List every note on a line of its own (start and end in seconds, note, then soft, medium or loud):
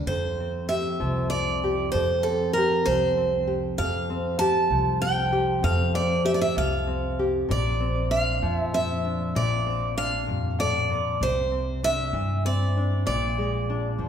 0.06 0.95 F2 medium
0.06 1.93 F2 medium
0.06 0.68 C5 medium
0.40 1.32 C4 soft
0.69 1.63 G4 medium
0.69 1.29 E5 medium
1.00 1.89 C2 medium
1.00 2.61 F3 medium
1.30 2.26 C4 soft
1.30 1.91 D5 medium
1.64 1.97 G4 medium
1.92 3.78 F2 medium
1.92 2.82 F2 medium
1.92 2.24 C5 medium
2.23 3.17 C4 medium
2.23 2.53 A4 medium
2.53 2.86 A#4 medium
2.58 3.47 G4 medium
2.86 3.75 C2 medium
2.86 4.44 F3 medium
2.86 3.51 C5 medium
3.17 4.09 C4 medium
3.47 3.82 G4 medium
3.78 4.67 F2 medium
3.78 5.61 F2 medium
3.78 4.38 F5 medium
4.10 5.01 C4 medium
4.39 5.31 G4 medium
4.39 5.01 A5 medium
4.70 5.60 C2 medium
4.70 6.28 F3 medium
5.01 5.94 C4 medium
5.01 5.63 G5 medium
5.33 5.60 G4 medium
5.63 7.49 F2 medium
5.63 6.53 F2 medium
5.63 5.95 F5 medium
5.94 6.87 C4 medium
5.94 6.25 D5 medium
6.25 7.18 G4 medium
6.25 6.33 E5 medium
6.34 6.41 D5 medium
6.41 6.58 E5 medium
6.56 7.46 C2 medium
6.56 8.42 F3 medium
6.56 7.23 F5 medium
6.87 7.52 C4 soft
7.19 7.46 G4 medium
7.49 8.39 A#1 medium
7.49 9.34 A#2 medium
7.49 8.08 D5 medium
7.80 8.73 C4 medium
8.11 9.04 D4 medium
8.11 8.57 F5 medium
8.42 9.31 F2 medium
8.42 9.32 F3 medium
8.57 8.74 E5 medium
8.74 9.38 C4 medium
8.74 9.36 E5 medium
9.05 9.69 D4 medium
9.35 10.24 A#1 medium
9.35 10.89 A#2 medium
9.35 9.94 D5 medium
9.66 11.17 C4 medium
9.97 11.24 D4 medium
9.97 10.59 F5 medium
10.27 11.17 F2 medium
10.27 10.58 G2 medium
10.59 10.90 A2 medium
10.59 11.23 D5 medium
10.90 11.21 A#2 medium
11.21 12.10 C2 medium
11.21 12.14 C3 medium
11.21 11.80 C5 medium
11.51 12.44 C4 medium
11.83 12.76 D4 medium
11.83 12.45 E5 medium
12.13 13.02 G2 medium
12.13 13.03 E3 medium
12.45 13.03 C4 medium
12.45 13.03 D5 medium
12.77 13.04 D4 medium
13.06 13.96 A#1 medium
13.06 14.09 A#2 medium
13.06 14.09 D5 medium
13.38 14.09 G#3 medium
13.70 14.09 D4 medium
13.98 14.09 F2 medium
13.98 14.09 F3 medium